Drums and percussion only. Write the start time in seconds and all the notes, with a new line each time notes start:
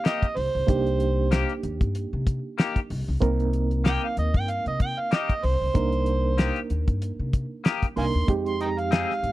0.05 snare, closed hi-hat
0.23 kick, closed hi-hat
0.37 open hi-hat
0.68 kick, closed hi-hat
0.86 closed hi-hat
1.00 closed hi-hat
1.32 snare, closed hi-hat
1.49 closed hi-hat
1.63 closed hi-hat
1.81 kick, closed hi-hat
1.95 closed hi-hat
2.27 kick, closed hi-hat
2.58 snare, closed hi-hat
2.76 kick, closed hi-hat
2.90 open hi-hat
3.22 kick, closed hi-hat
3.40 closed hi-hat
3.53 closed hi-hat
3.71 closed hi-hat
3.85 snare, closed hi-hat
4.17 closed hi-hat
4.34 kick, closed hi-hat
4.48 closed hi-hat
4.66 closed hi-hat
4.80 kick, closed hi-hat
5.12 snare, closed hi-hat
5.29 kick, closed hi-hat
5.43 open hi-hat
5.75 kick, closed hi-hat
5.92 closed hi-hat
6.06 closed hi-hat
6.38 snare, closed hi-hat
6.56 closed hi-hat
6.70 closed hi-hat
6.88 kick, closed hi-hat
7.02 closed hi-hat
7.33 kick, closed hi-hat
7.65 snare, closed hi-hat
7.82 kick, closed hi-hat
7.97 open hi-hat
8.28 kick, closed hi-hat
8.46 closed hi-hat
8.61 closed hi-hat
8.78 closed hi-hat
8.92 snare, closed hi-hat
9.11 snare
9.24 closed hi-hat